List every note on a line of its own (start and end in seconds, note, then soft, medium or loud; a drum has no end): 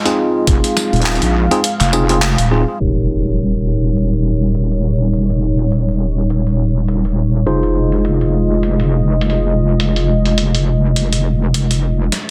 0.00 2.77 G#3 medium
0.00 2.77 F4 medium
0.00 0.45 D#5 medium
0.05 1.47 C4 medium
0.05 1.47 D#4 medium
0.05 1.47 F4 medium
0.05 1.47 G#4 medium
0.05 closed hi-hat medium
0.47 0.61 F1 medium
0.47 2.78 F5 medium
0.47 kick loud
0.47 closed hi-hat medium
0.64 closed hi-hat medium
0.77 snare medium
0.77 tambourine medium
0.93 1.19 D#1 loud
0.93 closed hi-hat soft
0.96 closed hi-hat soft
1.02 closed hi-hat soft
1.06 clap loud
1.06 closed hi-hat medium
1.11 closed hi-hat soft
1.15 closed hi-hat soft
1.22 1.48 A#1 medium
1.22 closed hi-hat medium
1.51 1.60 C4 loud
1.51 1.60 D#4 medium
1.51 1.59 F4 medium
1.51 1.60 G#4 loud
1.51 closed hi-hat soft
1.64 closed hi-hat medium
1.80 2.36 F1 medium
1.80 clap soft
1.80 closed hi-hat medium
1.93 2.04 C4 medium
1.93 2.04 D#4 medium
1.93 2.04 F4 medium
1.93 2.04 G#4 loud
1.93 tambourine medium
2.09 2.18 C4 medium
2.09 2.18 D#4 medium
2.09 2.18 F4 medium
2.09 2.18 G#4 medium
2.09 closed hi-hat soft
2.22 clap loud
2.22 closed hi-hat medium
2.38 2.65 D#1 medium
2.38 closed hi-hat medium
2.51 2.62 C4 medium
2.51 2.62 D#4 medium
2.51 2.62 F4 medium
2.51 2.62 G#4 medium
2.80 7.44 D#1 medium
2.80 7.43 G3 medium
2.80 7.42 D#4 medium
2.80 7.43 D#4 medium
2.80 7.43 G4 medium
2.80 7.43 A#4 medium
2.80 7.43 C#5 medium
2.80 closed hi-hat medium
2.80 impact medium
3.26 closed hi-hat soft
3.38 closed hi-hat medium
3.55 closed hi-hat soft
3.97 closed hi-hat medium
4.13 closed hi-hat soft
4.55 closed hi-hat medium
4.71 closed hi-hat soft
5.13 closed hi-hat medium
5.30 closed hi-hat medium
5.59 closed hi-hat soft
5.72 closed hi-hat medium
5.88 closed hi-hat soft
6.30 closed hi-hat medium
6.47 closed hi-hat soft
6.88 closed hi-hat medium
7.05 closed hi-hat medium
7.46 12.10 F1 medium
7.46 12.09 G#3 medium
7.46 12.09 D#4 medium
7.46 12.09 F4 medium
7.46 12.09 G#4 medium
7.46 12.09 C5 medium
7.46 12.09 D#5 medium
7.46 closed hi-hat medium
7.63 closed hi-hat medium
7.92 closed hi-hat soft
8.05 closed hi-hat medium
8.21 closed hi-hat soft
8.63 closed hi-hat medium
8.80 closed hi-hat soft
9.21 closed hi-hat medium
9.30 closed hi-hat medium
9.80 closed hi-hat medium
9.96 closed hi-hat soft
10.26 closed hi-hat soft
10.38 closed hi-hat medium
10.55 closed hi-hat soft
10.96 closed hi-hat medium
11.13 closed hi-hat soft
11.54 closed hi-hat medium
11.71 closed hi-hat soft
12.12 12.30 C#4 medium
12.12 12.30 G4 medium
12.12 12.30 D#5 medium
12.12 snare soft
12.12 closed hi-hat medium
12.12 riser medium